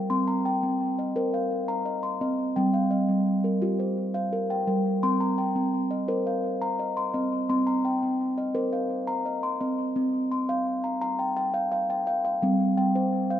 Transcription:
Already playing: G3 A#4 G5
0.10 C4 C6
0.28 A#5
0.45 G5
0.63 C4
0.99 D#5
1.16 A#4 C5
1.34 F5
1.68 A#5
1.86 D#5
2.03 C6
2.21 C4 D#5
2.56 G3 C4 G5
2.74 F5
2.91 D#5
3.09 G3
3.44 A#4
3.62 F4 G4
3.79 C5
4.14 F5
4.33 A#4
4.50 G5
4.67 G3 A#4
5.03 C4 C6
5.20 A#5
5.38 G5
5.56 C4
5.91 D#5
6.08 A#4 C5
6.27 F5
6.62 A#5
6.79 D#5
6.97 C6
7.14 C4 D#5
7.50 C4 C6
7.67 A#5
7.85 G5
8.03 C4
8.38 D#5
8.55 A#4 C5
8.73 F5
9.07 A#5
9.26 D#5
9.43 C6
9.61 C4 D#5
9.96 C4
10.32 C6
10.49 F5
10.84 A#5
11.02 A#5
11.19 G5
11.37 G5
11.54 F5
11.72 F5
11.90 G5
12.07 F5
12.25 F5
12.42 G3 C4
12.77 G5
12.95 C5
13.30 F5

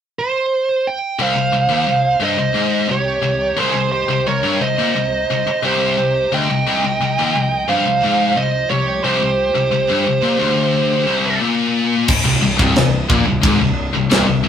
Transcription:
0.19 C5
0.87 G5
1.18 C2 C3 D#3 D#4 C5 F5
1.35 C2
1.52 C2
1.69 D#2
1.86 C2
2.20 G2 C5 D#5
2.38 C2
2.54 G#2
2.89 C2 G4 C#5
3.22 C2
3.57 C2 G#4 C5
3.74 C2
3.92 G4 C5
4.09 C2
4.27 C2 A#4 C#5
4.43 G2
4.61 C2 C5 D#5
4.78 A#2
4.96 C2
5.30 C2
5.47 muted distorted electric guitar stroke
5.63 C2 G4 C5
5.97 C2
6.32 D2 D#5 G5
6.50 C2
6.66 C2 F3
6.85 C2
7.01 C2
7.19 D#2
7.36 C2
7.68 G2 C5 F5
7.87 C2
8.04 G#2
8.36 C2 C5 D#5
8.70 C2 G4 C#5
9.04 C2 G4 C5
9.22 C2
9.55 C2
9.71 C2
9.89 G2
10.07 C2
10.23 A#2
10.39 D2
11.07 C2
11.40 A#2
12.08 kick, crash
12.25 C1 C2
12.41 C1 C2
12.58 C1 C2, kick
12.76 C1 C2, snare, crash
13.09 A#1 A#2, kick
13.25 C1 C2
13.41 G#1 G#2, kick, crash
13.59 C1 C2
13.93 C1 C2
14.10 C1 C2, snare, crash
14.26 C1 C2
14.43 C1 C2

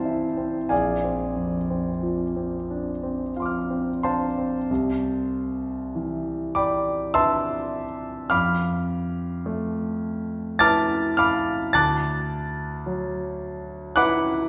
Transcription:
Already playing: C2 E3 C4 E4 C5 F5 A5 C6
0.05 E4
0.37 C4
0.69 A#1 G#4 D5 F5 G#5
1.04 C4
1.36 F2
1.70 C4
2.03 F3
2.36 C4
2.70 D4
3.03 C4
3.36 F3 F5 C6
3.42 D6 F6
3.70 C4
4.03 D4 C5 F5 A5 C6
4.38 C4
4.71 C2
5.95 E3
6.55 D5 G5 B5 D6
7.14 D4 B4 E5 A5 C6 E6
8.30 F2 F5 B5 D6 F6
9.46 A3
10.59 E4 B4 A5 D6 F6 A6
11.17 F5 B5 D6 F6
11.73 D2 A5 D6 F#6 A6
12.86 F#3
13.96 E4 B4 F#5 B5 D6 F#6

